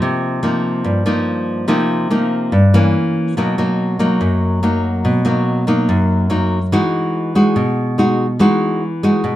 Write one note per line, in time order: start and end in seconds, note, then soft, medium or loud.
0.00 0.83 C3 medium
0.00 0.40 F3 medium
0.00 0.41 A#3 medium
0.00 0.41 D#4 medium
0.43 1.03 F3 medium
0.43 1.03 A#3 medium
0.43 1.03 D#4 medium
0.84 1.67 G2 medium
1.06 1.66 F3 medium
1.06 1.66 A#3 medium
1.06 1.66 D#4 medium
1.68 2.50 C3 medium
1.68 2.07 F3 medium
1.68 2.07 A#3 medium
1.68 2.08 D#4 medium
2.10 2.53 F3 medium
2.10 2.53 A#3 medium
2.10 2.53 D#4 medium
2.52 2.92 G2 medium
2.74 3.34 E3 medium
2.74 3.34 A#3 medium
2.74 3.34 C#4 medium
3.37 4.19 B2 medium
3.37 3.55 F#3 medium
3.37 3.55 A#3 medium
3.37 3.55 D#4 medium
3.58 3.97 F#3 medium
3.58 3.97 A#3 medium
3.58 3.97 D#4 medium
3.99 4.59 F#3 medium
3.99 4.59 A#3 medium
3.99 4.60 D#4 medium
4.21 5.03 F#2 medium
4.63 5.22 F#3 medium
4.63 5.23 A#3 medium
4.63 5.23 D#4 medium
5.05 5.87 B2 medium
5.25 5.64 F#3 medium
5.25 5.64 A#3 medium
5.25 5.64 D#4 medium
5.67 6.27 F#3 medium
5.67 6.27 A#3 medium
5.67 6.27 D#4 medium
5.89 6.71 F#2 medium
6.30 6.58 F#3 medium
6.30 6.59 A#3 medium
6.30 6.59 D#4 medium
6.72 7.54 E3 medium
6.72 7.32 G#3 medium
6.72 7.32 D#4 medium
6.72 7.33 F#4 medium
7.35 7.95 G#3 medium
7.35 7.95 D#4 medium
7.35 7.95 F#4 medium
7.56 8.38 B2 medium
7.98 8.25 G#3 medium
7.98 8.26 D#4 medium
7.98 8.26 F#4 medium
8.39 9.22 E3 medium
8.39 8.82 G#3 medium
8.39 8.82 D#4 medium
8.39 8.82 F#4 medium
9.03 9.36 G#3 medium
9.03 9.36 D#4 medium
9.03 9.36 F#4 medium
9.24 9.36 B2 medium